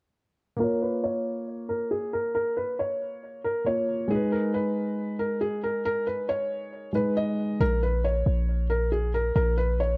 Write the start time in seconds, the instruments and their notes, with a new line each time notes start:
0.57 grand piano A#3 F4, felt piano A#4
0.64 grand piano C#5
0.82 felt piano B4
1.04 felt piano C#5
1.69 felt piano A#4
1.91 felt piano G#4
2.13 felt piano A#4
2.35 felt piano A#4
2.57 felt piano B4
2.79 felt piano C#5
3.44 felt piano A#4
3.65 grand piano A#3 F4 C#5, felt piano C#5
4.08 grand piano G#3 D#4, felt piano G#4
4.15 grand piano B4
4.32 felt piano A#4
4.54 felt piano B4
5.19 felt piano A#4
5.41 felt piano G#4
5.64 felt piano A#4
5.85 felt piano A#4
6.07 felt piano B4
6.29 felt piano C#5
6.93 grand piano G#3 D#4 B4, felt piano B4
7.17 felt piano D#5
7.60 808-style bass A#1, felt piano A#4
7.83 felt piano B4
8.04 felt piano C#5
8.26 808-style bass A#1
8.70 felt piano A#4
8.92 felt piano G#4
9.14 felt piano A#4
9.36 808-style bass A#1, felt piano A#4
9.58 felt piano B4
9.80 felt piano C#5